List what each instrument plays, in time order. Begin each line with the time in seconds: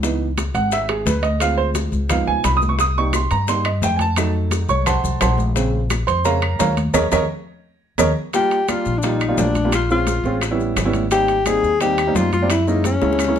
Already playing: upright bass C#2
0.03 grand piano E3 B3 D#4, high bongo, high conga, maracas
0.21 high conga
0.38 high bongo, high conga, high timbale, maracas
0.54 upright bass G#1, grand piano F#5, high conga, high timbale, maracas
0.72 grand piano E5, high bongo, high conga, maracas
0.89 grand piano G#4, high conga, high timbale
1.06 upright bass D2, grand piano B4, high bongo, low bongo, high conga, maracas
1.23 grand piano D#5, high timbale, maracas
1.40 grand piano G#3 C4 F4 F5, high bongo, high timbale, maracas
1.58 grand piano C5, high conga
1.75 high bongo, high conga, high timbale, maracas
1.92 upright bass C#2, high bongo, high conga, maracas
2.09 grand piano F3 B3 D#4 F5, high bongo, high conga, low conga, high timbale, maracas
2.27 upright bass C#2, grand piano G#5, high bongo, high conga
2.44 upright bass C2, grand piano B5, high bongo, low bongo, high conga, high timbale, maracas
2.57 grand piano D#6
2.62 high bongo, high conga, maracas
2.69 grand piano C#6
2.79 grand piano D#6, high bongo, high conga, maracas
2.96 grand piano G3 A#3 D#4 C#6, high conga
3.13 grand piano C6, high bongo, high conga, high timbale, claves, maracas
3.31 upright bass G2, grand piano A#5, high conga, high timbale, maracas
3.47 grand piano G3 A#3 D#4 C6, high bongo, high conga, maracas
3.64 grand piano D#5, high conga, high timbale, claves
3.82 upright bass F2, grand piano G5, high bongo, low bongo, high conga, maracas
3.96 grand piano G#5, high conga, high timbale
4.01 grand piano A5, maracas
4.16 grand piano F#3 A3 D#4, high bongo, high conga, high timbale, claves, maracas
4.34 high conga
4.51 high bongo, high conga, high timbale, maracas
4.68 upright bass C2, grand piano C#5 C#6, high bongo, high conga, maracas
4.86 grand piano C5 F#5 A5 C6, high bongo, high conga, low conga, high timbale, claves, maracas
5.03 upright bass C2, high bongo, high conga, low conga, maracas
5.21 upright bass A#1, grand piano C5 F#5 A5 C6, high bongo, low bongo, high conga, high timbale, low timbale, claves, maracas
5.38 high bongo, high conga, maracas
5.55 grand piano C#3 G#3 C4, high bongo, high conga, maracas
5.74 high conga
5.90 high bongo, high conga, high timbale, claves, maracas
6.07 upright bass F2, grand piano C5 C6, high conga, high timbale, maracas
6.24 grand piano C#3 G#3 C4 A#4 C#5 F5 A#5, high bongo, high conga, maracas
6.42 high conga, high timbale, claves
6.59 upright bass D#2, grand piano A#4 C#5 F5 A#5, high bongo, low bongo, high conga, low timbale, maracas
6.77 high conga, high timbale, maracas
6.94 upright bass D#2, grand piano A#4 C#5 D#5, high bongo, low conga, high timbale, claves, maracas
7.12 upright bass D#2, grand piano A#4 C#5 D#5, high bongo, low conga, high timbale, claves, maracas
7.98 upright bass D#2, grand piano A#4 C#5 D#5, high bongo, low conga, high timbale, claves, maracas
8.33 grand piano G3 A#3 D4 F4, alto saxophone G4, high bongo, high conga, high timbale, maracas
8.51 high conga, high timbale, maracas
8.68 grand piano G3 A#3 D4 F4, alto saxophone F4, high bongo, high conga, high timbale, claves, maracas
8.86 upright bass A#1, maracas
8.98 alto saxophone D4
9.02 grand piano G3 A#3 D4 F4, alto saxophone D#4, high bongo, high conga, high timbale, maracas
9.20 high conga, high timbale, claves, maracas
9.28 grand piano G3 A#3 D4 F4
9.38 upright bass A#1, alto saxophone D4, high bongo, low bongo, high conga, low timbale, maracas
9.55 high conga, high timbale, maracas
9.65 grand piano G3 A#3 D4 F4
9.72 alto saxophone F4, high bongo, high conga, high timbale, claves, maracas
9.90 grand piano G#3 C4 C#4 F4, alto saxophone F4, high bongo, high conga, maracas
10.07 high bongo, high conga, high timbale, maracas
10.24 upright bass A1, grand piano G#3 C4 C#4 F4, maracas
10.41 high bongo, high conga, high timbale, claves, maracas
10.51 grand piano G3 B3 C#4 E4
10.60 high bongo, high conga, maracas
10.76 upright bass G#1, high bongo, low bongo, high conga, high timbale, low timbale, claves, maracas
10.85 grand piano G3 B3 C#4 E4
10.93 high bongo, high conga, high timbale, maracas
11.11 grand piano G3 A#3 C4 D#4, alto saxophone G4, high bongo, high conga, high timbale, maracas
11.28 high conga, high timbale, maracas
11.46 grand piano G3 A#3 C4 D#4, alto saxophone G#4, high bongo, high conga, high timbale, claves, maracas
11.63 upright bass D#2, maracas
11.80 grand piano G3 A#3 C4 D#4, alto saxophone G4, high bongo, high conga, high timbale, maracas
11.98 high conga, high timbale, claves, maracas
12.07 grand piano G3 A#3 C4 D#4
12.15 upright bass F#2, alto saxophone F4, high bongo, low bongo, high conga, low timbale, maracas
12.32 alto saxophone F4, high conga, high timbale, maracas
12.42 grand piano G3 A#3 C4 D4
12.50 alto saxophone E4, high bongo, high conga, high timbale, claves, maracas
12.67 grand piano G#3 A#3 C#4 E4, alto saxophone D#4, high bongo, high conga, maracas
12.84 alto saxophone C#4, high bongo, high conga, high timbale, maracas
13.01 upright bass C#2, grand piano G#3 A#3 C#4 E4, high bongo, maracas
13.13 high bongo
13.19 high conga, high timbale, claves, maracas
13.24 high bongo
13.28 grand piano G#3 A#3 C#4 E4
13.36 low bongo, high conga